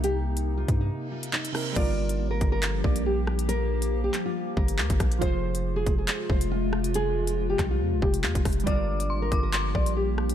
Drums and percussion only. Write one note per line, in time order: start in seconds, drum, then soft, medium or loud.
0.04 closed hi-hat medium
0.37 closed hi-hat medium
0.68 kick medium
0.68 closed hi-hat medium
1.23 closed hi-hat medium
1.33 clap loud
1.45 closed hi-hat medium
1.55 cross-stick loud
1.55 open hi-hat medium
1.76 kick loud
1.76 closed hi-hat medium
1.76 crash loud
2.09 closed hi-hat medium
2.41 kick medium
2.41 closed hi-hat medium
2.63 clap loud
2.63 closed hi-hat medium
2.84 kick loud
2.96 closed hi-hat medium
3.27 cross-stick loud
3.39 closed hi-hat medium
3.49 closed hi-hat medium
3.82 closed hi-hat medium
4.14 clap medium
4.14 closed hi-hat medium
4.57 kick loud
4.68 closed hi-hat medium
4.78 clap loud
4.90 kick medium
4.90 closed hi-hat medium
5.00 kick loud
5.00 cross-stick loud
5.00 closed hi-hat medium
5.12 closed hi-hat medium
5.22 kick loud
5.22 closed hi-hat medium
5.55 closed hi-hat medium
5.86 kick medium
5.86 closed hi-hat medium
6.08 clap loud
6.08 closed hi-hat medium
6.30 kick loud
6.41 closed hi-hat medium
6.73 cross-stick loud
6.84 closed hi-hat medium
6.94 closed hi-hat medium
7.27 closed hi-hat medium
7.59 kick medium
7.59 cross-stick medium
7.59 clap medium
7.59 closed hi-hat medium
8.02 kick loud
8.14 closed hi-hat medium
8.24 clap loud
8.35 kick medium
8.35 closed hi-hat medium
8.45 kick medium
8.45 cross-stick loud
8.45 closed hi-hat medium
8.45 open hi-hat medium
8.53 closed hi-hat medium
8.60 closed hi-hat medium
8.67 kick loud
8.67 closed hi-hat medium
9.00 closed hi-hat medium
9.32 kick loud
9.32 closed hi-hat medium
9.53 clap loud
9.53 closed hi-hat medium
9.75 kick medium
9.86 closed hi-hat medium
10.18 cross-stick loud
10.29 closed hi-hat medium